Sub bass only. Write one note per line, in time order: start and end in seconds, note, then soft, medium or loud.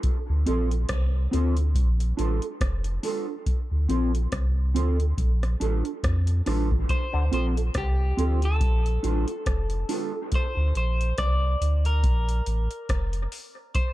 0.29 0.45 D2 loud
0.48 0.85 A#1 medium
0.90 1.28 C2 medium
1.34 1.77 D2 loud
1.75 2.13 A#1 loud
2.19 2.40 A1 loud
2.61 2.99 F1 loud
3.71 3.87 D2 medium
3.89 4.27 A#1 medium
4.33 4.77 C2 medium
4.76 5.13 D2 medium
5.18 5.56 A#1 loud
5.61 5.83 A1 loud
6.04 6.42 F2 medium
6.47 6.85 A1 medium
7.14 7.30 D2 loud
7.32 7.70 A#1 medium
7.76 8.13 C2 medium
8.18 8.63 D2 medium
8.61 8.99 A#1 loud
9.04 9.25 A1 loud
9.47 9.84 F1 loud
10.57 10.73 D2 loud
10.75 11.13 A#1 medium
11.18 11.56 C2 medium
11.61 12.05 D2 loud
12.04 12.41 A#1 loud
12.47 12.68 A1 loud
12.90 13.27 F1 medium